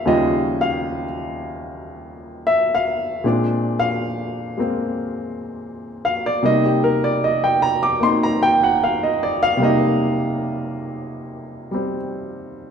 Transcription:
0.00 3.25 D#3 soft
0.00 3.25 A#3 soft
0.00 3.26 G4 soft
0.00 2.47 E5 medium
0.00 0.61 F5 medium
0.05 3.24 D#2 medium
0.05 3.24 C#3 medium
0.05 3.24 G3 medium
0.05 3.24 F4 medium
0.05 0.56 D#5 medium
0.61 1.03 F5 medium
2.47 2.71 E5 medium
2.75 3.22 F5 medium
3.24 6.42 A#2 soft
3.24 4.56 G#3 soft
3.24 4.58 C4 soft
3.24 6.43 D4 medium
3.24 3.75 D5 medium
3.79 4.05 F5 medium
4.57 6.42 G#3 soft
4.57 6.42 A#3 soft
4.57 6.43 C4 soft
6.05 6.23 F5 medium
6.26 6.40 D5 medium
6.43 9.55 C3 soft
6.43 9.57 G3 soft
6.43 7.99 A#3 soft
6.43 8.02 D#4 medium
6.43 6.70 D#5 medium
6.66 6.93 G4 soft
6.84 7.02 A#4 medium
7.04 7.19 D5 medium
7.24 7.49 D#5 medium
7.44 7.72 G5 medium
7.62 7.81 A#5 medium
7.83 7.98 D6 medium
8.00 9.59 A#3 soft
8.00 9.60 C4 soft
8.00 9.61 D#4 soft
8.00 8.28 C6 medium
8.23 8.52 A#5 medium
8.43 8.61 G5 medium
8.63 8.78 F#5 medium
8.84 9.08 F5 medium
9.03 9.31 D#5 medium
9.23 9.41 D5 medium
9.43 9.57 F5 loud
9.57 12.71 C3 medium
9.57 11.70 G3 soft
9.57 12.71 A#3 medium
9.62 12.71 D#4 medium
9.62 11.95 D#5 medium
11.71 12.71 G3 soft
11.71 12.71 C4 soft

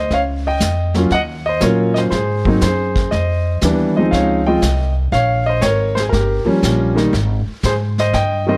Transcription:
0.00 0.11 C5 medium
0.00 0.13 D#5 medium
0.11 0.59 C#2 medium
0.11 0.20 C#5 medium
0.11 0.21 F5 medium
0.11 brush sweep soft
0.11 kick soft
0.11 snare soft
0.47 0.92 D#5 medium
0.47 0.93 G5 medium
0.60 1.09 F2 medium
0.60 kick soft
0.60 snare medium
0.60 hi-hat pedal medium
0.94 1.09 F#3 medium
0.94 1.10 A#3 medium
0.94 1.10 C#4 medium
0.94 1.11 F4 medium
0.94 snare soft
1.10 1.59 D#2 medium
1.10 1.21 D#5 medium
1.10 1.19 F#5 loud
1.10 brush sweep soft
1.10 kick soft
1.10 snare soft
1.46 1.62 C5 medium
1.46 1.62 D#5 medium
1.60 2.10 A#2 medium
1.60 2.11 F#3 medium
1.60 2.11 A#3 medium
1.60 2.12 C#4 medium
1.60 2.12 F4 medium
1.60 1.94 A#4 medium
1.60 1.93 C#5 medium
1.60 kick soft
1.60 snare medium
1.60 hi-hat pedal medium
1.94 2.03 C5 medium
1.94 1.99 D#5 medium
1.94 snare soft
2.10 2.60 G#2 medium
2.10 2.61 C5 medium
2.10 brush sweep soft
2.10 kick soft
2.10 snare soft
2.14 2.60 G#4 medium
2.45 2.60 F#3 medium
2.45 2.61 A#3 medium
2.45 2.61 C4 medium
2.45 2.61 D#4 medium
2.45 kick medium
2.61 3.10 F#2 medium
2.61 3.09 C5 medium
2.61 kick soft
2.61 snare medium
2.61 hi-hat pedal medium
2.67 3.11 G#4 medium
2.96 kick medium
2.96 snare soft
3.11 3.60 F2 medium
3.11 3.60 C5 medium
3.11 3.58 D#5 medium
3.11 brush sweep medium
3.11 kick soft
3.11 snare soft
3.61 4.10 D#2 medium
3.61 3.93 E3 medium
3.61 3.93 G3 medium
3.61 3.94 B3 medium
3.61 3.94 D4 medium
3.61 kick soft
3.61 snare medium
3.61 hi-hat pedal medium
3.96 4.40 F3 medium
3.96 4.40 G#3 medium
3.96 4.41 C4 medium
3.96 4.41 D#4 medium
3.96 4.11 C5 medium
3.96 4.13 D#5 medium
4.11 4.61 C#2 medium
4.11 4.44 C#5 medium
4.11 4.43 F5 medium
4.11 brush sweep soft
4.11 kick soft
4.11 snare soft
4.46 4.61 F3 medium
4.46 4.61 G#3 medium
4.46 4.62 C4 medium
4.46 4.62 F4 medium
4.46 4.93 D#5 medium
4.46 4.93 G5 medium
4.62 5.11 C2 medium
4.62 kick soft
4.62 snare medium
4.62 hi-hat pedal medium
5.12 5.61 A#1 medium
5.12 5.44 C#5 medium
5.12 5.47 F5 loud
5.12 brush sweep soft
5.12 kick soft
5.12 snare soft
5.46 5.63 C5 medium
5.46 5.63 D#5 medium
5.61 6.11 G#1 medium
5.61 5.93 C#5 medium
5.61 kick soft
5.61 snare medium
5.61 hi-hat pedal soft
5.65 5.95 A#4 medium
5.95 6.00 C5 medium
5.95 snare soft
6.00 6.05 G#4 medium
6.09 6.44 G1 medium
6.09 6.91 A#4 medium
6.09 brush sweep soft
6.09 kick soft
6.09 snare soft
6.13 6.93 G4 medium
6.45 6.92 F3 medium
6.45 6.93 G3 medium
6.45 6.93 A#3 medium
6.45 6.93 C#4 medium
6.45 muted upright bass stroke soft
6.63 7.11 A#1 medium
6.63 kick soft
6.63 snare medium
6.63 hi-hat pedal medium
6.95 7.10 D#3 medium
6.95 7.11 G3 medium
6.95 7.11 A#3 medium
6.95 7.11 D#4 medium
6.95 snare soft
7.13 7.44 G#1 medium
7.13 brush sweep soft
7.13 kick soft
7.13 snare soft
7.47 muted upright bass stroke soft
7.63 8.12 G#2 medium
7.63 7.73 G#4 medium
7.63 7.73 C5 medium
7.63 kick soft
7.63 snare medium
7.63 hi-hat pedal medium
7.98 8.13 C5 medium
7.98 8.13 D#5 medium
7.98 snare soft
8.13 8.57 G2 medium
8.13 8.45 D#5 medium
8.13 8.45 G5 loud
8.13 brush sweep soft
8.13 kick soft
8.13 snare soft
8.47 8.57 D#3 medium
8.47 8.57 G3 medium
8.47 8.57 A#3 medium
8.47 8.57 C4 medium
8.47 8.57 C5 medium
8.47 8.57 D#5 medium

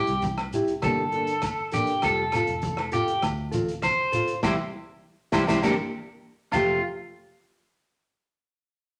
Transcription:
0.00 0.13 C4 soft
0.00 0.12 E4 medium
0.00 0.12 G4 medium
0.00 0.22 G4 medium
0.07 0.79 C2 medium
0.07 closed hi-hat soft
0.22 kick medium
0.22 closed hi-hat soft
0.22 high conga medium
0.22 shekere medium
0.37 cross-stick medium
0.37 low agogo medium
0.53 0.73 C4 soft
0.53 0.72 E4 medium
0.53 0.72 G4 medium
0.53 closed hi-hat soft
0.53 shekere medium
0.68 closed hi-hat soft
0.68 shekere soft
0.82 1.99 G1 loud
0.82 1.02 G3 medium
0.82 1.02 A#3 medium
0.82 1.02 D4 medium
0.82 1.70 A4 medium
0.82 1.02 A4 medium
0.82 kick medium
0.82 cross-stick medium
0.82 closed hi-hat soft
0.82 muted conga soft
0.82 high conga medium
0.82 low conga medium
0.82 low agogo medium
0.82 shekere medium
1.12 1.33 A#3 soft
1.12 1.32 D4 medium
1.12 1.31 A4 soft
1.12 closed hi-hat soft
1.27 closed hi-hat medium
1.27 shekere soft
1.42 kick medium
1.42 cross-stick medium
1.42 closed hi-hat medium
1.42 low agogo medium
1.42 shekere medium
1.72 1.92 A#3 soft
1.72 1.92 D4 medium
1.72 2.03 G4 medium
1.72 1.91 A4 medium
1.72 closed hi-hat medium
1.72 muted conga soft
1.72 high conga medium
1.72 shekere medium
1.87 closed hi-hat medium
1.87 shekere soft
2.02 2.45 F1 medium
2.02 2.21 G3 medium
2.02 2.21 C4 medium
2.02 2.22 F4 medium
2.02 2.90 A4 medium
2.02 2.22 A4 medium
2.02 kick medium
2.02 cross-stick medium
2.02 closed hi-hat medium
2.02 low agogo medium
2.02 shekere medium
2.32 2.53 C4 soft
2.32 2.52 F4 medium
2.32 2.52 A4 medium
2.32 cross-stick medium
2.32 closed hi-hat medium
2.32 muted conga soft
2.32 low agogo medium
2.32 shekere medium
2.47 3.19 F1 medium
2.47 closed hi-hat soft
2.62 kick medium
2.62 closed hi-hat medium
2.62 high conga medium
2.62 shekere medium
2.77 cross-stick medium
2.77 low agogo medium
2.92 3.12 C4 soft
2.92 3.12 F4 soft
2.92 3.22 G4 medium
2.92 3.11 A4 medium
2.92 closed hi-hat medium
2.92 shekere loud
3.08 closed hi-hat medium
3.22 4.39 D2 loud
3.22 kick loud
3.22 cross-stick medium
3.22 closed hi-hat medium
3.22 muted conga soft
3.22 low agogo medium
3.22 shekere medium
3.51 3.72 C4 medium
3.51 3.72 F4 medium
3.51 3.71 A4 medium
3.51 closed hi-hat medium
3.51 high conga medium
3.51 shekere medium
3.68 closed hi-hat medium
3.68 shekere soft
3.82 4.39 C5 loud
3.82 kick medium
3.82 cross-stick medium
3.82 closed hi-hat medium
3.82 high conga medium
3.82 low agogo medium
3.82 shekere medium
4.12 4.32 C4 soft
4.12 4.32 F4 soft
4.12 4.31 A4 medium
4.12 closed hi-hat medium
4.12 muted conga soft
4.12 shekere loud
4.28 closed hi-hat soft
4.28 shekere soft
4.43 4.55 C2 loud
4.43 4.53 G3 medium
4.43 4.53 C4 loud
4.43 4.53 E4 loud
4.43 4.53 G4 loud
4.43 4.53 C5 medium
4.43 kick medium
4.43 snare medium
4.43 high conga loud
4.43 low agogo medium
4.43 shekere loud
5.32 5.45 C2 loud
5.32 5.42 G3 loud
5.32 5.42 C4 loud
5.32 5.42 E4 medium
5.32 5.43 E4 loud
5.32 5.43 G4 loud
5.32 5.43 C5 loud
5.32 kick medium
5.32 snare medium
5.32 high conga loud
5.32 low agogo loud
5.32 shekere loud
5.47 5.60 C2 medium
5.47 5.57 G3 medium
5.47 5.57 C4 medium
5.47 5.58 E4 loud
5.47 5.58 G4 loud
5.47 5.58 C5 medium
5.47 kick medium
5.47 snare medium
5.47 high conga loud
5.47 low agogo loud
5.47 shekere loud
5.62 5.75 G1 loud
5.62 5.73 A#3 medium
5.62 5.73 D4 medium
5.62 5.73 G4 loud
5.62 5.73 A4 medium
5.62 5.73 A#4 medium
5.62 kick medium
5.62 snare medium
5.62 high conga medium
5.62 low agogo loud
5.62 shekere loud
6.52 6.81 F1 medium
6.52 6.77 F3 medium
6.52 6.78 A3 medium
6.52 6.78 C4 medium
6.52 6.81 F4 medium
6.52 6.78 G4 medium
6.52 kick medium
6.52 crash medium
6.52 muted conga medium
6.52 low agogo loud
6.52 shekere medium

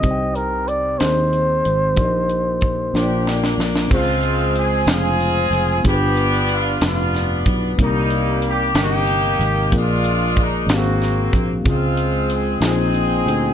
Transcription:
0.00 0.96 C2 medium
0.00 0.96 C3 medium
0.00 0.98 C4 medium
0.00 0.99 D#4 soft
0.00 1.00 G4 medium
0.00 1.00 C5 soft
0.00 0.37 D#5 medium
0.00 kick medium
0.00 closed hi-hat medium
0.04 0.11 D5 soft
0.11 1.04 G5 medium
0.35 0.69 A#4 medium
0.35 closed hi-hat soft
0.68 1.00 D5 medium
0.68 closed hi-hat soft
0.99 1.61 D#2 medium
0.99 1.94 D#3 medium
0.99 1.97 C4 medium
0.99 1.95 D#4 soft
0.99 1.98 G#4 medium
0.99 1.07 A#4 soft
0.99 3.26 C5 medium
0.99 1.98 D#5 medium
0.99 snare medium
0.99 closed hi-hat medium
1.08 2.01 C5 soft
1.33 closed hi-hat soft
1.65 1.95 G#1 medium
1.65 closed hi-hat soft
1.95 2.90 A#1 medium
1.95 2.90 A#2 medium
1.95 2.92 A#3 medium
1.95 2.94 D#4 medium
1.95 2.94 G4 medium
1.95 2.94 A#4 medium
1.95 2.04 D5 medium
1.95 kick medium
1.95 closed hi-hat medium
2.04 2.98 D#5 medium
2.29 closed hi-hat soft
2.61 kick medium
2.61 closed hi-hat soft
2.93 3.55 A#1 medium
2.93 3.88 A#2 medium
2.93 3.91 A#3 medium
2.93 3.88 A#3 medium
2.93 3.91 D4 medium
2.93 3.88 D4 medium
2.93 3.90 F4 medium
2.93 3.55 G4 medium
2.93 3.92 A#4 medium
2.93 3.02 C#5 medium
2.93 snare soft
3.03 3.96 D5 medium
3.27 snare medium
3.44 snare medium
3.58 3.88 A#1 medium
3.58 snare medium
3.76 snare medium
3.88 4.84 C#2 loud
3.88 4.84 C#3 medium
3.88 5.80 G#3 medium
3.88 5.79 C4 medium
3.88 5.81 F4 soft
3.88 kick loud
3.88 crash medium
3.92 4.85 G#3 medium
3.92 4.85 C4 medium
3.92 4.53 F4 medium
3.92 5.82 G#4 medium
3.92 5.82 C5 medium
4.23 closed hi-hat soft
4.56 4.88 G#4 loud
4.56 closed hi-hat soft
4.87 5.48 F1 medium
4.87 5.82 C4 medium
4.87 5.81 F4 medium
4.87 5.82 G#4 loud
4.87 snare loud
4.87 closed hi-hat medium
5.20 closed hi-hat soft
5.51 5.81 F1 medium
5.51 closed hi-hat medium
5.82 6.77 G1 medium
5.82 6.77 G2 medium
5.82 7.73 B3 medium
5.82 7.74 D4 medium
5.82 7.74 F4 medium
5.82 7.75 G4 medium
5.82 kick loud
5.82 closed hi-hat medium
5.87 6.79 B3 medium
5.87 6.79 D4 medium
5.87 6.50 G4 medium
5.87 5.93 G#4 medium
5.94 7.79 B4 medium
6.17 closed hi-hat soft
6.49 6.83 F4 medium
6.49 closed hi-hat soft
6.81 7.42 F1 medium
6.81 7.76 D4 medium
6.81 7.44 F4 medium
6.81 snare loud
6.81 closed hi-hat loud
6.86 7.77 B3 medium
7.14 snare soft
7.14 closed hi-hat soft
7.46 7.76 B1 medium
7.46 kick medium
7.46 closed hi-hat medium
7.77 8.71 C2 loud
7.77 8.72 C3 medium
7.77 9.67 A#3 medium
7.77 9.68 C4 medium
7.77 9.69 D#4 medium
7.77 kick loud
7.77 closed hi-hat medium
7.81 8.73 G3 medium
7.81 8.73 A#3 medium
7.81 8.41 D#4 loud
7.81 9.70 G4 medium
7.81 9.70 A#4 medium
8.10 closed hi-hat soft
8.42 closed hi-hat medium
8.50 8.79 G4 loud
8.75 9.36 G1 medium
8.75 snare loud
8.75 closed hi-hat loud
8.81 9.71 A#3 medium
8.81 9.71 D#4 medium
8.81 9.72 G4 loud
9.07 closed hi-hat soft
9.39 9.69 G#1 medium
9.39 closed hi-hat medium
9.71 10.65 A#1 loud
9.71 10.65 A#2 medium
9.71 10.67 A#3 medium
9.71 9.79 C4 soft
9.71 10.69 F4 medium
9.71 10.69 G#4 medium
9.71 10.70 A#4 medium
9.71 kick loud
9.71 closed hi-hat medium
9.76 10.67 G#3 medium
9.76 10.67 D4 medium
9.76 10.40 F4 medium
9.76 10.72 D5 medium
10.04 closed hi-hat medium
10.36 kick loud
10.36 closed hi-hat medium
10.43 10.72 D#4 medium
10.67 11.28 G#1 loud
10.67 11.62 G#2 medium
10.67 11.65 A#3 medium
10.67 11.63 C4 medium
10.67 11.66 F#4 medium
10.67 11.66 F5 medium
10.67 snare loud
10.67 closed hi-hat medium
10.71 11.52 A#3 medium
10.71 11.52 C4 medium
10.71 10.76 G4 medium
10.76 11.37 F#4 medium
10.76 11.65 G#4 medium
11.02 snare soft
11.02 closed hi-hat soft
11.33 11.63 A#1 medium
11.33 kick medium
11.33 closed hi-hat medium
11.64 12.58 C#2 medium
11.64 12.58 C#3 medium
11.64 12.62 G#3 medium
11.64 12.59 C4 medium
11.64 12.61 F4 medium
11.64 12.62 G#4 medium
11.64 kick loud
11.64 closed hi-hat medium
11.69 12.60 G#3 medium
11.69 12.60 C4 medium
11.69 12.29 F4 medium
11.97 closed hi-hat medium
12.30 12.64 G#4 medium
12.30 closed hi-hat medium
12.60 13.22 A#1 medium
12.60 13.54 A#2 medium
12.60 13.54 A#3 medium
12.60 13.54 C4 medium
12.60 13.54 D#4 medium
12.60 13.54 F4 medium
12.60 13.54 G#4 medium
12.60 snare medium
12.60 closed hi-hat medium
12.65 13.54 C4 medium
12.65 13.54 D#4 medium
12.65 13.54 G#4 medium
12.94 closed hi-hat soft
13.26 13.54 D2 medium
13.26 closed hi-hat medium

